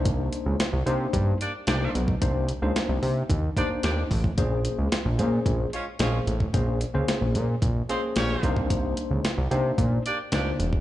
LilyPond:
<<
  \new Staff \with { instrumentName = "Horn section" } { \time 4/4 \key c \phrygian \tempo 4 = 111 r2 r8 <bes d' g' d''>16 r16 <bes d' g' d''>8 r8 | r2 r8 <bes d' g' d''>16 r16 <bes d' g' d''>8 r8 | r2 r8 <aes des' f' des''>16 r16 <aes des' f' des''>8 r8 | r2 r8 <aes c' f' c''>16 r16 <bes des' g' des''>8. r16 |
r2 r8 <bes d' g' d''>16 r16 <bes d' g' d''>8 r8 | }
  \new Staff \with { instrumentName = "Tine electric piano" } { \time 4/4 \key c \phrygian <bes d' ees' c''>4 r8 <bes d' ees' c''>4 r8 <bes d' ees' c''>8 r8 | <bes d' ees' c''>8 r16 <bes d' ees' c''>4 r8. <bes d' ees' c''>4 r8 | <bes des' aes' c''>4 r8 <bes des' aes' c''>4 r8 <bes des' aes' c''>8 r8 | <bes des' aes' c''>8 r16 <bes des' aes' c''>4 r8. <bes des' aes' c''>4 <bes d' ees' c''>8~ |
<bes d' ees' c''>4 r8 <bes d' ees' c''>4 r8 <bes d' ees' c''>8 r8 | }
  \new Staff \with { instrumentName = "Analog synth bass" } { \clef bass \time 4/4 \key c \phrygian c,8. des,16 r16 c,16 c8 g,8 r8 c,8 ces,8 | c,8. des,16 r16 c,16 c8 ees,8 r8 ees,8 a,,8 | bes,,8. des,16 r16 bes,,16 bes,8 bes,,8 r8 bes,,8 a,,8 | bes,,8. des,16 r16 bes,,16 bes,8 bes,,8 r8 bes,,8 c,8~ |
c,8. des,16 r16 c,16 c8 bes,8 r8 des,8 e,,8 | }
  \new DrumStaff \with { instrumentName = "Drums" } \drummode { \time 4/4 <hh bd>8 hh8 <hh sn>8 hh8 <hh bd>8 hh8 <hh sn>8 hh16 bd16 | <hh bd>8 hh8 <hh sn>8 hho8 <hh bd>8 <hh bd>8 <hh sn>8 <hho bd>16 bd16 | <hh bd>8 hh8 <hh sn>8 hh8 <hh bd>8 hh8 <hh sn>8 hh16 bd16 | <hh bd>8 hh8 <hh sn>8 hh8 <hh bd>8 hh8 <hh sn>8 <hh bd>16 bd16 |
<hh bd>8 hh8 <hh sn>8 hh8 <hh bd>8 hh8 <hh sn>8 hh16 bd16 | }
>>